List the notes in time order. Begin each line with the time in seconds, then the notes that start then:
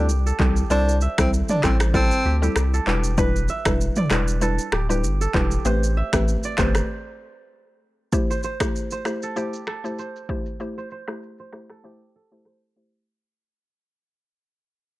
Already playing: D2 E4 G4 A4 C5 D5
0.09 C2, shaker
0.26 A4, shaker
0.39 C2 G3 C4 E4 G4 A4, kick, clap
0.56 shaker
0.70 C2 G3 C4 D4 E4 A4 C5, shaker
0.89 shaker
1.01 E5, shaker
1.18 C2 G3 C4 E4 A4, finger snap, kick, cross-stick, shaker
1.34 shaker
1.49 D4 D5, mid tom, shaker
1.63 A1 G3 C4 E4 A4 C5, finger snap, kick, cross-stick, clap, shaker
1.80 finger snap, cross-stick, shaker
1.94 G3 C4 E4 A4, kick, shaker
2.11 shaker
2.25 D2 G4
2.42 G3 C4 E4 G4 A4, shaker
2.56 C2, finger snap, cross-stick, shaker
2.74 A4, shaker
2.87 E1 G3 D4 E4 G4 B4, clap
3.04 shaker
3.18 G3 D4 E4 B4, kick, shaker
3.36 shaker
3.48 E5, shaker
3.65 E1 G3 D4 E4 B4, finger snap, kick, cross-stick, shaker
3.81 shaker
3.96 D5, mid tom, shaker
4.10 E1 G3 D4 E4 B4, finger snap, cross-stick, clap, shaker
4.28 shaker
4.41 G3 D4 E4 A4 B4, shaker
4.59 shaker
4.72 D1 G4, finger snap, cross-stick
4.89 G3 D4 E4 G4 B4, shaker
5.03 G1, shaker
5.21 A4, shaker
5.34 E1 G3 D4 E4 G4 B4, kick, clap
5.51 shaker
5.65 A1 A3 C4 G4 B4 C5, shaker
5.84 shaker
5.97 E5
6.13 A1 A3 C4 G4 B4, finger snap, kick, cross-stick, shaker
6.28 shaker
6.43 D5, shaker
6.58 G1 A3 C4 G4 B4 C5, finger snap, kick, cross-stick, clap, shaker
6.75 finger snap, cross-stick, shaker
8.12 A3 E4 G4 C5, kick, shaker
8.30 C5, shaker
8.43 C5, shaker
8.60 A3 E4 G4 C5, finger snap, kick, cross-stick, shaker
8.76 shaker
8.91 C5, shaker
9.05 A3 E4 G4 C5, finger snap, cross-stick, shaker
9.23 A4, shaker
9.36 A3 E4 G4 C5, shaker
9.53 shaker
9.67 A4, finger snap, cross-stick
9.84 A3 E4 G4 C5, shaker
9.99 C5, shaker
10.16 shaker
10.29 A3 E4 G4 C5, kick
10.46 shaker
10.60 A3 E4 G4 C5, shaker
10.78 C5, shaker
10.91 C5, shaker
11.08 A3 E4 G4 C5, finger snap, cross-stick, shaker
11.23 shaker
11.38 C5, shaker
11.53 A3 E4 G4 C5, finger snap, cross-stick, shaker
11.70 A4, finger snap, cross-stick
11.84 A3 E4 G4 C5
12.01 shaker
12.16 A4
12.32 A3 E4 G4 C5
12.45 C5, finger snap, cross-stick
12.76 A3 E4 G4 C5